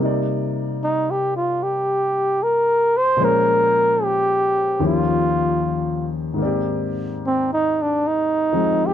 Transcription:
Already playing: C3 G3
0.00 A#3 D#4
0.05 D5
0.84 D#4
1.11 G4
1.36 F4
1.63 G4
2.43 A#4
2.97 C5
3.17 A#2 F3 G#3
3.21 C#4 A#4 C5
4.04 G4
4.80 D#2 D#3 F3 C#4 G4
4.86 F4
6.34 G#2 D#3
6.38 A#3 C4
6.42 G4 D5
7.27 C4
7.53 D#4
7.82 D4
8.07 D#4
8.52 F3 G#3 C4 D#4
8.86 G4

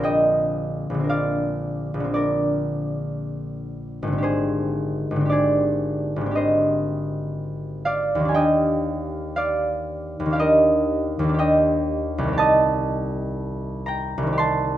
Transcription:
Already playing: A#1 D3 C4 D4 C5 D5 F5
0.00 A#4 G5
0.04 D#5
0.90 A#1
0.94 D3
1.00 C4
1.04 A#4
1.09 D5 F5
1.94 A#1
2.00 D3
2.04 C4
2.14 A#4 D5
4.03 G#1
4.07 D3
4.12 C4
4.18 G4
4.23 G#4 C5
5.11 G#1
5.16 D3
5.21 C4
5.25 G4
5.30 G#4 D5
6.16 G#1
6.21 D3
6.26 C4
6.31 G4
6.35 C5 D#5
7.85 D5 F5
8.15 D#2
8.20 D#3
8.25 D4 G#5
8.29 G4
8.34 D#5 G5
9.36 D5 F5
10.20 D#2
10.26 D#3
10.30 D4 F5
10.35 G4
10.39 A#4 D#5
11.19 D#2
11.24 D#3
11.29 D4
11.34 G4
11.39 D#5 G5
12.18 C2
12.23 D#3
12.28 C4
12.33 G4
12.38 D#5 A5
13.86 G5 A#5
14.18 C2
14.23 D#3
14.27 C4
14.33 G4
14.38 A5 C6

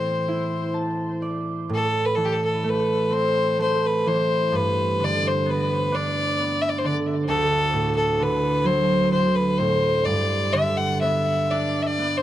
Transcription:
Already playing: A2 E3 C4 C5
0.28 E4
0.74 A5
1.22 D5
1.69 A2
1.74 A4
2.05 B4
2.15 E3 A4
2.25 G4
2.33 A4
2.45 A4
2.64 A3
2.69 B4
3.10 C4 C5
3.59 A3 C5
3.86 B4
4.06 E3 C5
4.52 G2 B4
5.00 D3 D5
5.28 C5
5.46 B3 B4
5.92 D4 D5
6.38 B3
6.61 E5
6.69 D5
6.78 C5
6.84 D3 D5
7.28 D2 A4
7.73 A2
7.97 A4
8.20 D3 B4
8.64 F#3 C5
9.11 D3 C5
9.35 B4
9.58 A2 C5
10.05 G2 D5
10.52 D3 E5
10.77 F#5
11.01 B3 E5
11.51 D4 D5
11.82 D5 E5
11.99 B3
12.17 C5

